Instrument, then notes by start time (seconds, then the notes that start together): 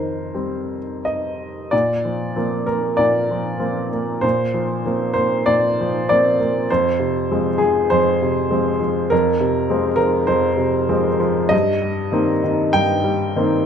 upright piano
Already playing: F2 D#3 A#4 C5
0.35 G3 C4
1.05 D#5
1.71 A#2 D5
2.05 F3
2.36 F3 A#3 C4
2.67 A#3 A#4
2.97 A#2 D5
3.31 F3
3.59 F3 A#3 C4
3.93 A#3
4.21 A#2 C5
4.54 F3
4.86 F3 A#3 C4
5.14 A#3 C5
5.46 A#2 D5
5.81 F3
6.09 F3 A#3 C4 D5
6.40 A#3
6.70 F2 C5
6.99 C3
7.31 F3 G#3 C4
7.58 F3 G#4
7.90 F2 C5
8.22 C3
8.51 F3 G#3 C4
8.81 F3
9.10 F2 A#4
9.40 C3
9.69 F3 G#3 C4
9.96 F3 A#4
10.27 F2 C5
10.57 C3
10.89 F3 G#3 C4
11.20 F3
11.49 G2 D#5
11.81 G3
12.12 D#3 A#3 C4
12.44 D#3
12.73 G2 G5
13.04 G3
13.36 D#3 A#3 C4